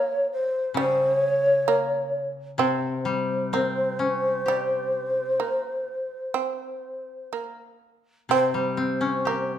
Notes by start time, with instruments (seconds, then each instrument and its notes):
Already playing: shamisen A#3, shakuhachi C#5
0.32 shakuhachi C5
0.74 koto C#3, shamisen G3
0.78 shakuhachi C5
1.14 shakuhachi C#5
1.68 shamisen A#3
2.58 koto C3, shamisen C4, shakuhachi C5
3.05 koto G3
3.53 shamisen A#3, koto C4
3.99 koto C#4
4.46 shamisen G3, koto G4
5.40 shamisen A#3
6.34 shamisen C4
7.33 shamisen A#3
8.29 koto C3, shamisen C4, shakuhachi C5
8.54 koto G3
8.77 koto C4
9.01 koto C#4
9.25 shamisen A#3, koto G4